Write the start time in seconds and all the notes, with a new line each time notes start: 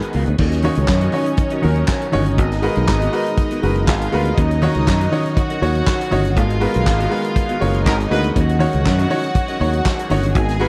Already playing: D#3 G#3 B3 F#4 A#4 B4
0.02 muted clean electric guitar stroke, closed hi-hat
0.13 C#2 B3 F#4 A#4 F5, open hi-hat
0.26 D2, muted clean electric guitar stroke, closed hi-hat
0.38 D#2 D#3 F#3 C#4 D#4 F#4 A#4 C#5 D#5, kick, crash
0.52 snare, closed hi-hat
0.62 D#3 C#4 D#4 F#4 A#4 C#5 F5, open hi-hat
0.75 C#2 C#4 F#4 A#4 D#5, closed hi-hat
0.88 F#2, kick, snare, clap
1.01 C#4 F#4 A#4 D#5, closed hi-hat
1.12 D#3 C#4 D#4 F#4 A#4 C#5 D#5, open hi-hat
1.26 muted clean electric guitar stroke, closed hi-hat
1.37 muted clean electric guitar stroke, kick, closed hi-hat
1.50 C#4 F#4 A#4 D#5, closed hi-hat
1.62 D#2 D#3 D#4 F#4 A#4, muted clean electric guitar stroke, open hi-hat
1.76 muted clean electric guitar stroke, closed hi-hat
1.88 kick, snare, clap
2.01 muted clean electric guitar stroke, closed hi-hat
2.12 G1 D#3 C#4 D#4 F#4 A#4 C#5 D#5, open hi-hat
2.26 muted clean electric guitar stroke, closed hi-hat
2.37 G#1 G#3 B3 D#4 F#4 A#4 D#5, kick, closed hi-hat
2.52 snare, closed hi-hat
2.62 G#3 B3 F#4 A#4 B4 F5, open hi-hat
2.75 B1 B3 F#4 A#4 F5, closed hi-hat
2.88 G#1, kick, snare, clap
3.00 B3 F#4 A#4 D#5, closed hi-hat
3.12 G#3 B3 F#4 A#4 B4 D#5, open hi-hat
3.26 muted clean electric guitar stroke, closed hi-hat
3.37 muted clean electric guitar stroke, kick, closed hi-hat
3.50 B3 F#4 A#4 D#5, closed hi-hat
3.62 F#1 G#3 F#4 A#4 B4, muted clean electric guitar stroke, open hi-hat
3.75 muted clean electric guitar stroke, closed hi-hat
3.87 G#1 F4 F5, kick, snare, clap
4.00 muted clean electric guitar stroke, closed hi-hat
4.12 D2 G#3 B3 F#4 A#4 B4 F5, open hi-hat
4.25 muted clean electric guitar stroke, closed hi-hat
4.37 D#2 F#3 C#4 D#4 F#4 A#4 D#5, kick, closed hi-hat
4.51 closed hi-hat
4.61 D#3 C#4 D#4 F#4 A#4 C#5 F5, open hi-hat
4.75 C#2 C#4 F#4 A#4 D#5, closed hi-hat
4.87 F#2, kick, snare, clap
5.00 C#4 F#4 A#4 D#5, closed hi-hat
5.11 D#3 C#4 D#4 F#4 A#4 C#5 D#5, open hi-hat
5.25 muted clean electric guitar stroke, closed hi-hat
5.37 F#4 F#5, muted clean electric guitar stroke, kick, closed hi-hat
5.49 C#4 F#4 A#4 D#5, closed hi-hat
5.61 D#2 D#3 D#4 F#4 C#5, muted clean electric guitar stroke, open hi-hat
5.75 muted clean electric guitar stroke, closed hi-hat
5.87 kick, snare, clap
6.00 muted clean electric guitar stroke, closed hi-hat
6.11 G1 D#3 C#4 D#4 F#4 A#4 C#5 D#5, open hi-hat
6.24 muted clean electric guitar stroke, closed hi-hat
6.36 G#1 G#3 B3 F4 F#4 G#4 A#4 D#5 F5, kick, closed hi-hat
6.50 closed hi-hat
6.60 G#3 B3 F#4 A#4 B4 F5, open hi-hat
6.74 B1 B3 F#4 A#4 F5, closed hi-hat
6.86 G#1, muted clean electric guitar stroke, kick, snare, clap
6.99 B3 F#4 A#4 D#5, closed hi-hat
7.10 G#3 B3 F#4 A#4 B4 D#5, open hi-hat
7.23 muted clean electric guitar stroke, closed hi-hat
7.35 muted clean electric guitar stroke, kick, closed hi-hat
7.49 B3 F#4 A#4 D#5, closed hi-hat
7.60 F#1 G#3 F#4 A#4 C#5, open hi-hat
7.74 muted clean electric guitar stroke, closed hi-hat
7.85 G#1 D#4 F#4 A#4 D#5, muted clean electric guitar stroke, kick, snare, clap
8.00 closed hi-hat
8.10 D2 G#3 B3 D#4 F#4 A#4 B4 F5, open hi-hat
8.24 muted clean electric guitar stroke, closed hi-hat
8.35 D#2 F#3 C#4 F#4 A#4 D#5 F#5, kick, closed hi-hat
8.49 closed hi-hat
8.59 D#3 C#4 D#4 F#4 A#4 C#5 F5, open hi-hat
8.73 C#2 C#4 F#4 A#4 D#5, closed hi-hat
8.86 F#2, kick, snare, clap
8.98 C#4 F#4 A#4 D#5, closed hi-hat
9.10 D#3 C#4 D#4 F#4 A#4 C#5 D#5, open hi-hat
9.23 muted clean electric guitar stroke, closed hi-hat
9.35 muted clean electric guitar stroke, kick, closed hi-hat
9.48 C#4 F#4 A#4 D#5, closed hi-hat
9.60 D#2 D#3 D#4 F#4 C#5, open hi-hat
9.73 muted clean electric guitar stroke, closed hi-hat
9.86 kick, snare, clap
9.98 muted clean electric guitar stroke, closed hi-hat
10.09 G1 D#3 C#4 D#4 F#4 A#4 C#5 D#5, open hi-hat
10.23 muted clean electric guitar stroke, closed hi-hat
10.34 G#1 G#3 B3 F#4 G#4 A#4 D#5 G#5, kick, closed hi-hat
10.49 snare, closed hi-hat
10.59 G#3 B3 F#4 A#4 B4 F5, open hi-hat